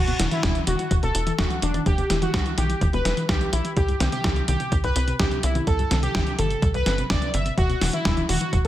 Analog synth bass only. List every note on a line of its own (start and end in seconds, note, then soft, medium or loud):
0.00 0.13 E1 loud
0.19 0.28 E1 loud
0.43 0.61 E1 medium
0.67 0.76 E1 medium
0.91 1.00 E1 medium
1.03 1.11 E1 medium
1.15 1.32 E1 medium
1.39 1.47 E1 loud
1.62 1.80 E1 loud
1.86 2.03 E1 medium
2.10 2.27 E1 medium
2.34 2.42 B1 medium
2.58 2.75 B1 medium
2.81 2.90 E1 loud
2.93 3.02 E1 medium
3.05 3.14 E1 loud
3.29 3.46 B1 medium
3.53 3.61 B1 medium
3.77 3.94 C2 loud
4.00 4.09 C2 loud
4.24 4.41 C2 medium
4.48 4.57 C2 medium
4.72 4.81 C2 medium
4.84 4.92 C2 medium
4.96 5.13 C2 medium
5.19 5.28 C2 loud
5.43 5.61 C2 loud
5.67 5.84 C2 medium
5.91 6.08 C2 medium
6.15 6.23 G1 medium
6.39 6.56 G1 medium
6.62 6.71 C2 loud
6.74 6.83 C2 medium
6.86 7.03 G1 medium
7.10 7.19 G1 medium
7.34 7.51 G1 loud
7.58 7.75 E1 loud
7.81 7.90 E1 loud
8.05 8.22 E1 medium
8.29 8.38 E1 medium
8.53 8.61 E1 medium